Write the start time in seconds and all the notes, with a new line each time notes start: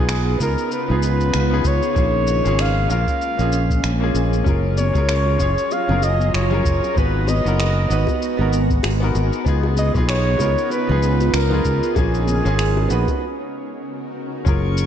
Already playing: B1 C#3 B3 D#4 F4 G#4
0.09 finger snap, shaker
0.38 C#2 B3 D#4 F4 A#4, kick, shaker
0.58 shaker
0.72 B4, shaker
0.88 C#2 B3 D#4 F4 G#4
1.03 shaker
1.21 shaker
1.34 C#2, finger snap, shaker
1.50 B3 D#4 F4 G#4
1.65 C#2 C#5, kick, shaker
1.83 shaker
1.94 A#1 G#3 A#3 C#4 F4 G#4, kick, shaker
2.27 shaker
2.43 G#1 A#3 C#4 F4 G#4, shaker
2.59 F5, finger snap, shaker
2.88 A#1 A#3 C#4 F4 A#4 F5, shaker
3.08 kick, shaker
3.22 shaker
3.37 A#1 A#3 C#4 F4 G#4, shaker
3.52 shaker
3.70 kick, shaker
3.84 A#1, finger snap, shaker
4.00 A#3 C#4 F4 G#4
4.14 A#1, shaker
4.33 shaker
4.44 F#1 F#3 C#4 F4 G#4 A#5, kick, high bongo, shaker
4.49 A#4
4.78 C#5, high conga, shaker
4.93 C#2 C#4 F4 G#4, kick, high bongo, shaker
4.98 A#4
5.09 finger snap, shaker
5.26 high bongo
5.38 F#1 C#4 F4 G#4 C#5, kick, shaker
5.58 shaker
5.71 F5, high bongo, shaker
5.88 F#1 C#4 F4 G#4 A#4, high conga, low conga
6.02 D#5, high bongo, shaker
6.20 high conga, shaker
6.34 F#1 C#5, finger snap, shaker
6.50 C#4 F4 G#4 A#4, high bongo, low conga
6.65 F#1, kick, shaker
6.83 high bongo, shaker
6.94 G#1 G#3 B3 D#4 F#4 B4, kick, shaker
6.98 B4
7.27 D#5, high bongo, high conga, shaker
7.44 F#1 B3 D#4 F#4 A#4, shaker
7.58 finger snap, high bongo, shaker
7.88 G#1 B3 D#4 F#4 B4, shaker
8.07 kick, high bongo, shaker
8.22 shaker
8.37 G#1 B3 D#4 F#4, high bongo, high conga
8.41 A#4
8.53 shaker
8.70 kick, high conga, shaker
8.83 G#1, finger snap, high bongo, shaker
9.00 B3 D#4 F#4 A#4
9.15 G#1, high bongo, shaker
9.33 shaker
9.45 C#2 C#3 B3 D#4 F4 G#4, kick, shaker
9.63 high bongo
9.77 D#5, high conga, shaker
9.94 B1 B3 D#4 F4 G#4, kick, high bongo, shaker
10.09 C#5, finger snap, shaker
10.38 C#2 B3 D#4 F4 A#4, kick, high bongo, shaker
10.58 shaker
10.70 B4, high bongo, shaker
10.87 C#2 B3 D#4 F4, high conga, low conga
10.91 G#4
11.03 shaker
11.20 high bongo, high conga, shaker
11.33 C#2 A#4, finger snap, shaker
11.50 B3 D#4 F4 G#4, high bongo, low conga
11.65 C#2, kick, shaker
11.83 shaker
11.94 A#1 G#3 A#3 C#4 F4 G#4, kick, high bongo, shaker
11.99 G#4
12.14 shaker
12.27 high bongo, high conga, shaker
12.44 G#1 A#3 C#4 F4 G#4, shaker
12.59 finger snap, shaker
12.77 high bongo
12.88 A#1 B3 D#4 F#4 B4, shaker
13.08 kick, high bongo, shaker
13.21 C#3 B3 D#4 F#4 A#4
14.45 F#1 F#3 C#4 F4 G#4 A#4 A#5 C#6, kick, shaker
14.78 shaker